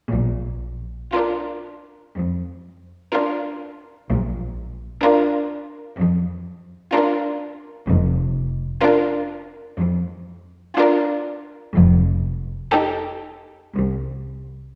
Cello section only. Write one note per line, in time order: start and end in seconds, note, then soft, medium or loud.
0.12 0.97 A#2 soft
2.17 2.96 F2 soft
4.10 4.86 A#2 soft
5.98 6.76 F2 soft
7.89 8.65 F2 medium
9.79 10.60 F2 medium
11.75 12.54 F2 medium
13.76 14.60 C2 soft